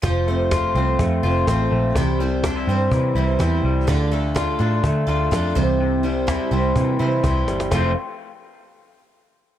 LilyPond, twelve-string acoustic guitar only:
\new Staff \with { instrumentName = "Twelve-string acoustic guitar" } { \time 4/4 \key f \major \tempo 4 = 125 <f a c' f' c''>8 <c' f' c''>8 <c' f' c''>8 <c' f' c''>4 <c' f' c''>8 <a c' f' c''>4 | <c e g c' e' c''>8 <g c' e' c''>8 <g c' e' c''>8 <g c' e' c''>4 <g c' e' c''>8 <g c' e' c''>4 | <d a d' f' a'>8 <d' f' a'>8 <a d' f' a'>8 <d' f' a'>4 <d' f' a'>8 <a d' f' a'>8 <c e g c' e' c''>8~ | <c e g c' e' c''>8 <g c' e' c''>8 <g c' e' c''>8 <g c' e' c''>4 <g c' e' c''>8 <g c' e' c''>4 |
<f a c' f' c''>8 r2. r8 | }